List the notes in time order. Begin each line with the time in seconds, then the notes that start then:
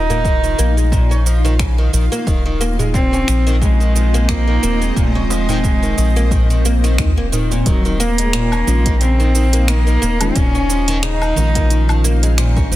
Already playing: D#1 D#4 F4 F5
0.10 A#3, darbuka ka, darbuka dum, shaker
0.25 D#3, kick, shaker
0.44 D#3, shaker
0.59 A#1 A#3, shaker
0.77 G#3, darbuka tek, shaker
0.92 A#2, kick, shaker
1.11 C#4, shaker
1.26 F3, darbuka ka, shaker
1.45 D#3, darbuka ka, shaker
1.59 C#3, finger snap, kick, shaker
1.78 D#3
1.93 A#1 D#3, shaker
2.12 A#3, darbuka ka, shaker
2.27 D#1 D#3 C4 F4 C5 D#5, kick, shaker
2.46 D#3
2.61 A#3, darbuka tek, shaker
2.79 G#3, darbuka ka, darbuka dum, shaker
2.94 A#2 C4, kick, shaker
3.13 C#4, shaker
3.28 A#1 F3, finger snap, shaker
3.47 D#3, darbuka tek, shaker
3.62 C#3 G#3, kick, shaker
3.80 D#3, shaker
3.95 D#3, darbuka ka, shaker
4.14 A#3, shaker
4.29 D#3 A#3, finger snap, kick, shaker
4.48 D#3, darbuka tek
4.63 D#1 A#3, shaker
4.82 G#3, shaker
4.96 D#1 A#2 G#3, kick, shaker
5.15 C#4
5.30 F3, darbuka tek, shaker
5.49 D#3, darbuka ka, darbuka dum, shaker
5.64 C#3, kick, shaker
5.83 D#3, shaker
5.97 A#1 D#3, shaker
6.16 A#3, darbuka tek, shaker
6.31 D#3, kick, darbuka dum, shaker
6.50 D#3, shaker
6.65 A#3, darbuka ka, shaker
6.84 D#3, darbuka ka, shaker
6.98 D#2 D#3, finger snap, kick, shaker
7.17 D#1 A#3
7.32 D#3, darbuka dum, shaker
7.51 A#2, darbuka ka, darbuka tek, shaker
7.66 D#1 D#3 F#3 D#4 D#5 F5, kick, closed hi-hat, shaker
7.85 D#3, shaker
8.00 A#3, shaker
8.18 G#3, closed hi-hat, shaker
8.33 A#2, finger snap, closed hi-hat, shaker
8.52 C#4, low woodblock, shaker
8.66 A#1 D#3 F3 G#3 C#4 F4, shaker
8.86 D#3, kick, closed hi-hat, shaker
9.01 C#3 C4, closed hi-hat, shaker
9.20 D#3, shaker
9.35 D#3, shaker
9.53 A#3, closed hi-hat, shaker
9.68 D#3 A#3, finger snap, closed hi-hat, shaker
9.87 D#3, shaker
10.02 D#1 A#3, shaker
10.20 D#3 G#3 C#4 F4, closed hi-hat, low woodblock, shaker
10.36 D#1 A#2 C#4 C5, kick, closed hi-hat, shaker
10.55 C#4, shaker
10.70 F3, shaker
10.88 D#3, closed hi-hat, shaker
11.03 C#3 D#4, finger snap, closed hi-hat, shaker
11.22 D#3, low woodblock, shaker
11.35 A#1 D#3 G#3 C#4, shaker
11.39 F4
11.55 A#3, kick, closed hi-hat, shaker
11.70 D#3, closed hi-hat, shaker
11.89 D#3, low woodblock, shaker
12.04 A#3, shaker
12.23 G#3, closed hi-hat, shaker
12.38 A#2, finger snap, closed hi-hat, shaker
12.56 C#4, kick, shaker
12.70 A#1 C#3 D#3 F3 G#3, shaker